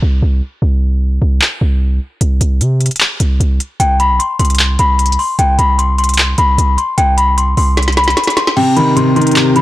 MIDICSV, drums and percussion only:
0, 0, Header, 1, 2, 480
1, 0, Start_track
1, 0, Tempo, 397351
1, 749, Time_signature, 4, 2, 24, 8
1, 11617, End_track
2, 0, Start_track
2, 0, Title_t, "Drums"
2, 1709, Note_on_c, 9, 39, 101
2, 1830, Note_off_c, 9, 39, 0
2, 2669, Note_on_c, 9, 42, 85
2, 2790, Note_off_c, 9, 42, 0
2, 2910, Note_on_c, 9, 42, 71
2, 3030, Note_off_c, 9, 42, 0
2, 3152, Note_on_c, 9, 42, 90
2, 3273, Note_off_c, 9, 42, 0
2, 3389, Note_on_c, 9, 42, 50
2, 3453, Note_off_c, 9, 42, 0
2, 3453, Note_on_c, 9, 42, 61
2, 3516, Note_off_c, 9, 42, 0
2, 3516, Note_on_c, 9, 42, 70
2, 3573, Note_off_c, 9, 42, 0
2, 3573, Note_on_c, 9, 42, 82
2, 3629, Note_on_c, 9, 39, 105
2, 3694, Note_off_c, 9, 42, 0
2, 3750, Note_off_c, 9, 39, 0
2, 3866, Note_on_c, 9, 42, 74
2, 3986, Note_off_c, 9, 42, 0
2, 4114, Note_on_c, 9, 42, 72
2, 4235, Note_off_c, 9, 42, 0
2, 4352, Note_on_c, 9, 42, 65
2, 4472, Note_off_c, 9, 42, 0
2, 4589, Note_on_c, 9, 42, 84
2, 4710, Note_off_c, 9, 42, 0
2, 4830, Note_on_c, 9, 42, 73
2, 4950, Note_off_c, 9, 42, 0
2, 5073, Note_on_c, 9, 42, 90
2, 5193, Note_off_c, 9, 42, 0
2, 5309, Note_on_c, 9, 42, 70
2, 5373, Note_off_c, 9, 42, 0
2, 5373, Note_on_c, 9, 42, 69
2, 5436, Note_off_c, 9, 42, 0
2, 5436, Note_on_c, 9, 42, 66
2, 5492, Note_off_c, 9, 42, 0
2, 5492, Note_on_c, 9, 42, 69
2, 5548, Note_off_c, 9, 42, 0
2, 5548, Note_on_c, 9, 42, 66
2, 5549, Note_on_c, 9, 39, 100
2, 5669, Note_off_c, 9, 39, 0
2, 5669, Note_off_c, 9, 42, 0
2, 5785, Note_on_c, 9, 42, 75
2, 5906, Note_off_c, 9, 42, 0
2, 6029, Note_on_c, 9, 42, 66
2, 6109, Note_off_c, 9, 42, 0
2, 6109, Note_on_c, 9, 42, 62
2, 6189, Note_off_c, 9, 42, 0
2, 6189, Note_on_c, 9, 42, 64
2, 6271, Note_on_c, 9, 46, 46
2, 6310, Note_off_c, 9, 42, 0
2, 6391, Note_off_c, 9, 46, 0
2, 6508, Note_on_c, 9, 42, 84
2, 6629, Note_off_c, 9, 42, 0
2, 6749, Note_on_c, 9, 42, 69
2, 6870, Note_off_c, 9, 42, 0
2, 6993, Note_on_c, 9, 42, 87
2, 7114, Note_off_c, 9, 42, 0
2, 7229, Note_on_c, 9, 42, 52
2, 7293, Note_off_c, 9, 42, 0
2, 7293, Note_on_c, 9, 42, 62
2, 7357, Note_off_c, 9, 42, 0
2, 7357, Note_on_c, 9, 42, 72
2, 7413, Note_off_c, 9, 42, 0
2, 7413, Note_on_c, 9, 42, 87
2, 7469, Note_on_c, 9, 39, 106
2, 7534, Note_off_c, 9, 42, 0
2, 7590, Note_off_c, 9, 39, 0
2, 7706, Note_on_c, 9, 42, 75
2, 7827, Note_off_c, 9, 42, 0
2, 7954, Note_on_c, 9, 42, 76
2, 8075, Note_off_c, 9, 42, 0
2, 8191, Note_on_c, 9, 42, 68
2, 8312, Note_off_c, 9, 42, 0
2, 8429, Note_on_c, 9, 42, 84
2, 8550, Note_off_c, 9, 42, 0
2, 8670, Note_on_c, 9, 42, 73
2, 8791, Note_off_c, 9, 42, 0
2, 8912, Note_on_c, 9, 42, 85
2, 9033, Note_off_c, 9, 42, 0
2, 9148, Note_on_c, 9, 46, 65
2, 9269, Note_off_c, 9, 46, 0
2, 9389, Note_on_c, 9, 38, 59
2, 9389, Note_on_c, 9, 42, 66
2, 9453, Note_off_c, 9, 42, 0
2, 9453, Note_on_c, 9, 42, 57
2, 9510, Note_off_c, 9, 38, 0
2, 9517, Note_off_c, 9, 42, 0
2, 9517, Note_on_c, 9, 38, 54
2, 9517, Note_on_c, 9, 42, 44
2, 9573, Note_off_c, 9, 42, 0
2, 9573, Note_on_c, 9, 42, 38
2, 9629, Note_off_c, 9, 38, 0
2, 9629, Note_off_c, 9, 42, 0
2, 9629, Note_on_c, 9, 38, 69
2, 9629, Note_on_c, 9, 42, 46
2, 9709, Note_off_c, 9, 42, 0
2, 9709, Note_on_c, 9, 42, 51
2, 9750, Note_off_c, 9, 38, 0
2, 9757, Note_on_c, 9, 38, 69
2, 9789, Note_off_c, 9, 42, 0
2, 9789, Note_on_c, 9, 42, 61
2, 9868, Note_off_c, 9, 38, 0
2, 9868, Note_off_c, 9, 42, 0
2, 9868, Note_on_c, 9, 38, 89
2, 9868, Note_on_c, 9, 42, 65
2, 9949, Note_off_c, 9, 42, 0
2, 9949, Note_on_c, 9, 42, 72
2, 9989, Note_off_c, 9, 38, 0
2, 9996, Note_on_c, 9, 38, 81
2, 10029, Note_off_c, 9, 42, 0
2, 10029, Note_on_c, 9, 42, 79
2, 10109, Note_off_c, 9, 38, 0
2, 10109, Note_on_c, 9, 38, 96
2, 10110, Note_off_c, 9, 42, 0
2, 10110, Note_on_c, 9, 42, 66
2, 10229, Note_off_c, 9, 38, 0
2, 10231, Note_off_c, 9, 42, 0
2, 10236, Note_on_c, 9, 38, 90
2, 10349, Note_on_c, 9, 49, 85
2, 10357, Note_off_c, 9, 38, 0
2, 10470, Note_off_c, 9, 49, 0
2, 10589, Note_on_c, 9, 42, 73
2, 10710, Note_off_c, 9, 42, 0
2, 10832, Note_on_c, 9, 42, 84
2, 10953, Note_off_c, 9, 42, 0
2, 11068, Note_on_c, 9, 42, 50
2, 11132, Note_off_c, 9, 42, 0
2, 11132, Note_on_c, 9, 42, 60
2, 11196, Note_off_c, 9, 42, 0
2, 11196, Note_on_c, 9, 42, 73
2, 11252, Note_off_c, 9, 42, 0
2, 11252, Note_on_c, 9, 42, 84
2, 11308, Note_off_c, 9, 42, 0
2, 11308, Note_on_c, 9, 42, 66
2, 11309, Note_on_c, 9, 39, 104
2, 11429, Note_off_c, 9, 42, 0
2, 11430, Note_off_c, 9, 39, 0
2, 11545, Note_on_c, 9, 42, 74
2, 11617, Note_off_c, 9, 42, 0
2, 11617, End_track
0, 0, End_of_file